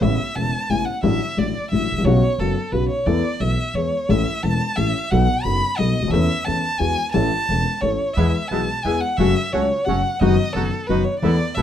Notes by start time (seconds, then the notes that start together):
0.01 A1 A2 C#3 A3 B3 E4 E5
0.36 E1 E2 C#3 A3 B3 E4 A5
0.70 A1 A2 C#3 A3 B3 E4 G#5
0.85 F#5
1.03 A1 A2 D3 F#3 A3 E4 E5
1.37 A1 A2 D3 F#3 A3 E4 D5
1.71 A1 A2 D3 F#3 A3 E4 E5
1.92 G#1
1.97 A1 A#1
2.02 A#1 B1 C#5
2.06 B1 B2 C#3 F#3 B3 F#4
2.38 F#1 F#2 C#3 F#3 B3 F#4 A4
2.72 B1 B2 C#3 F#3 B3 F#4 B4
2.89 C#5
3.06 E2 E3 A3 B3 A4 D5
3.40 B1 B2 E3 A3 B3 A4 E5
3.74 E2 E3 G#3 B3 G#4 C#5
4.09 A1 A2 E3 A3 C#4 A4 E5
4.43 E1 E2 E3 A3 C#4 A4 A5
4.76 A1 A2 E3 A3 C#4 A4 E5
5.11 B1 B2 F#3 B3 D#4 A4 F#5
5.44 F#1 F#2 F#3 B3 D#4 A4 B5
5.77 B1 B2 F#3 B3 D#4 A4 D#5
5.99 C#2 D2
6.04 D2 D#2
6.09 D#2 E2 E3 A3 C#4 A4 E5
6.13 E2
6.45 E2 E3 A3 C#4 A4 A5
6.78 E2 E3 G#3 B3 F#4 G#5
7.12 A1 A2 E3 A3 C#4 A4 A5
7.49 E1 E2 E3 A3 C#4 A4
7.81 A1 A2 E3 A3 C#4 A4 C#5
8.14 E2 E3 G#3 B3 E4 G#4 E5
8.18 E2
8.48 B1 G#3 B3 E4 A5
8.52 B1 B2 E3 G#3 B3 G#4
8.83 E2 E3 G#3 B3 E4 G#4 G#5
9.01 F#5
9.17 F#1 F#2 C#3 F#3 A3 C#4 F#4 E5
9.53 C#2 C#3 F#3 A3 C#4 F#4 C#5
9.85 F#1 F#2 C#3 F#3 A3 C#4 F#4 F#5
10.20 F#1 F#2 D#3 F#3 B3 D#4 F#4 D#5
10.53 F#1 F#2 D#3 F#3 B3 D#4 F#4 A4
10.87 F#1 F#2 D#3 F#3 B3 D#4 F#4 B4
11.04 C#5
11.20 E2 E3 A3 B3 E4 A4 D5
11.55 B1 B2 E3 A3 B3 E4 A4 E5